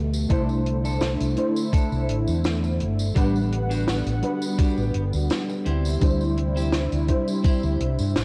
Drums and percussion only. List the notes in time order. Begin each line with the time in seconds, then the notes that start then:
0.13 tambourine
0.30 kick, closed hi-hat
0.49 tambourine
0.66 closed hi-hat
0.85 tambourine
1.01 snare, closed hi-hat, tambourine
1.20 closed hi-hat, tambourine
1.36 closed hi-hat
1.56 tambourine
1.73 kick, closed hi-hat, tambourine
1.92 tambourine
2.09 closed hi-hat
2.28 tambourine
2.44 snare, closed hi-hat, tambourine
2.64 tambourine
2.80 closed hi-hat
2.99 tambourine
3.16 kick, closed hi-hat, tambourine
3.36 tambourine
3.52 closed hi-hat
3.71 tambourine
3.88 snare, closed hi-hat, tambourine
4.06 closed hi-hat, tambourine
4.22 closed hi-hat
4.42 tambourine
4.58 kick, closed hi-hat, tambourine
4.78 tambourine
4.94 closed hi-hat
5.13 tambourine
5.30 snare, closed hi-hat, tambourine
5.49 tambourine
5.66 closed hi-hat
5.85 tambourine
6.01 kick, closed hi-hat, tambourine
6.21 tambourine
6.37 closed hi-hat
6.57 tambourine
6.72 snare, closed hi-hat, tambourine
6.92 closed hi-hat, tambourine
7.08 kick, closed hi-hat
7.28 tambourine
7.44 kick, closed hi-hat, tambourine
7.63 tambourine
7.80 closed hi-hat
7.99 tambourine
8.16 snare, closed hi-hat, tambourine